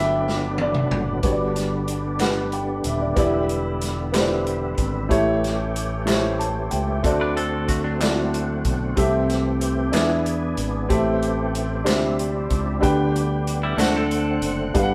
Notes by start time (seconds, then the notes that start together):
Already playing: G1 D3 F#3 A3 B3 D4 E5 G5 B5
0.28 snare
0.58 D5, high tom
0.74 mid tom
0.91 F#1, mid tom
1.23 G1 G2 D3 G3 B3 D4 F#4 G4 C#5, kick, closed hi-hat
1.32 D5
1.56 snare, closed hi-hat
1.88 closed hi-hat
2.19 B3 G4 B4 F#5, snare, clap, closed hi-hat
2.52 G5, closed hi-hat
2.84 D#1 E5, closed hi-hat
3.01 D5
3.16 E1 D3 E3 B3 E4 G4 D5, kick, closed hi-hat
3.49 closed hi-hat
3.81 snare, closed hi-hat
4.12 B3 E4 G4 C5, snare, clap, closed hi-hat
4.21 D5
4.47 closed hi-hat
4.78 G#1, kick, closed hi-hat
5.09 A1 A2 E3 A3 C#4 E4 G4 C#5, kick, closed hi-hat
5.44 snare, closed hi-hat
5.76 closed hi-hat
6.06 A3 E4 G4 C5, clap, closed hi-hat
6.10 snare
6.14 C#5
6.39 A5, closed hi-hat
6.71 C#2 G5, closed hi-hat
6.87 E5
7.03 D2 D3 C4 F#4 A4 D5, kick, closed hi-hat
7.21 D4 B4
7.37 C4 A4, closed hi-hat
7.68 A3 F#4, kick, closed hi-hat
7.84 F#3 D4
7.99 C4 E4 A4 D5, clap, closed hi-hat
8.03 F#4, snare
8.34 closed hi-hat
8.65 B1, kick, closed hi-hat
8.96 C2 C3 E3 C4 G4 A4 E5, kick, closed hi-hat
9.29 snare, closed hi-hat
9.61 closed hi-hat
9.92 E2 E3 B3 D4 G#4 B4 E5, snare, clap, closed hi-hat
9.96 D4
10.26 closed hi-hat
10.57 G#1, closed hi-hat
10.89 A1 A2 A3 C4 G4 A4 E5, kick, closed hi-hat
11.22 closed hi-hat
11.55 closed hi-hat
11.84 D2 C3 D4 G4 C5 E5, clap, closed hi-hat
11.88 G3 E4, snare
12.19 closed hi-hat
12.50 C#2, kick, closed hi-hat
12.81 D2 D3 B3 D4 G4 B4 G5, kick, closed hi-hat
13.16 closed hi-hat
13.47 closed hi-hat
13.63 G3 E4
13.76 D2 D3 A3 C4 D4 A4 C5 F#5, clap, closed hi-hat
13.80 A3 F#4, snare
13.96 C4 A4
14.11 closed hi-hat
14.42 F#1, closed hi-hat
14.74 G1 G2 D3 G3 B3 D4 G4 B4 F5, kick, closed hi-hat
14.83 F#5